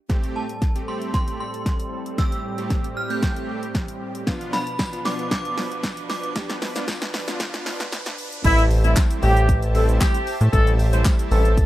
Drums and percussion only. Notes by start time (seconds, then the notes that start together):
0.10 kick, snare, closed hi-hat
0.24 closed hi-hat
0.49 closed hi-hat
0.62 kick, snare, closed hi-hat
0.76 closed hi-hat
1.02 closed hi-hat
1.14 kick, snare, closed hi-hat
1.28 closed hi-hat
1.54 closed hi-hat
1.66 kick, snare, closed hi-hat
1.80 closed hi-hat
2.06 closed hi-hat
2.18 kick, snare, closed hi-hat
2.32 closed hi-hat
2.58 closed hi-hat
2.70 kick, snare, closed hi-hat
2.84 closed hi-hat
3.10 closed hi-hat
3.23 kick, snare, closed hi-hat
3.36 closed hi-hat
3.63 closed hi-hat
3.75 kick, snare, closed hi-hat
3.88 closed hi-hat
4.15 closed hi-hat
4.27 kick, snare, closed hi-hat, tambourine
4.41 closed hi-hat
4.53 snare, open hi-hat, tambourine
4.67 closed hi-hat
4.79 kick, snare, closed hi-hat, tambourine
4.93 closed hi-hat
5.05 snare, open hi-hat, tambourine
5.19 closed hi-hat
5.31 kick, snare, closed hi-hat, tambourine
5.45 closed hi-hat
5.58 snare, open hi-hat
5.72 closed hi-hat
5.83 kick, snare, closed hi-hat, tambourine
5.97 closed hi-hat
6.10 snare, open hi-hat, tambourine
6.24 closed hi-hat
6.36 kick, snare, closed hi-hat, tambourine, shaker
6.50 snare, closed hi-hat, shaker
6.62 snare, open hi-hat, tambourine, shaker
6.76 snare, closed hi-hat, shaker
6.88 kick, snare, closed hi-hat, tambourine, shaker
7.02 snare, closed hi-hat, shaker
7.13 snare, open hi-hat, tambourine, shaker
7.28 snare, closed hi-hat, shaker
7.40 kick, snare, closed hi-hat, tambourine, shaker
7.54 snare, closed hi-hat, shaker
7.66 snare, open hi-hat, shaker
7.80 snare, closed hi-hat, shaker
7.92 snare, closed hi-hat, tambourine, shaker
8.06 snare, closed hi-hat, shaker
8.18 open hi-hat, tambourine, shaker
8.32 closed hi-hat, shaker
8.44 kick, closed hi-hat, crash, tambourine, shaker
8.58 closed hi-hat, shaker
8.71 open hi-hat, tambourine, shaker
8.84 closed hi-hat, shaker
8.96 kick, snare, clap, closed hi-hat, tambourine, shaker
9.11 closed hi-hat, shaker
9.22 open hi-hat, tambourine, shaker
9.37 closed hi-hat, shaker
9.49 kick, closed hi-hat, tambourine, shaker
9.62 closed hi-hat, shaker
9.75 open hi-hat, shaker
9.89 closed hi-hat, shaker
10.01 kick, snare, clap, closed hi-hat, tambourine, shaker
10.14 closed hi-hat, shaker
10.27 open hi-hat, tambourine, shaker
10.41 closed hi-hat, shaker
10.53 kick, closed hi-hat, tambourine, shaker
10.67 closed hi-hat, shaker
10.79 open hi-hat, tambourine, shaker
10.93 closed hi-hat, shaker
11.05 kick, snare, clap, closed hi-hat, tambourine, shaker
11.19 closed hi-hat, shaker
11.31 open hi-hat, tambourine, shaker
11.45 closed hi-hat, shaker
11.57 kick, closed hi-hat, tambourine, shaker